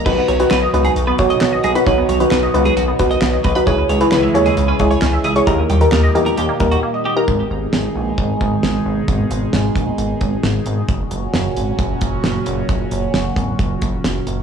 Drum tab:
CC |x---------------|----------------|----------------|----------------|
HH |--xx--xxx-xx--xx|x-xx--xxx-xx--xx|x-xx--xxx-xx--xx|x-xx--xxx-xx----|
CP |----x-------x---|----x-------x---|----x-------x---|----x-----------|
SD |----o-------o---|----o-------o---|----o-------o---|----o-----------|
BD |o---------o-----|o---------o---o-|o---------o-----|o---------o-----|

CC |----------------|----------------|----------------|----------------|
HH |----------------|x-x-x-x-x-x-x-x-|x-x-x-x-x-x-x-x-|x-x-x-x-x-x-x-x-|
CP |----------------|----------------|----------------|----------------|
SD |----o-------o---|----o-------o---|----o-------o---|----o-------o---|
BD |o-------o-o-----|o-----o---o-----|o-------o-o-----|o-----o-o-o-----|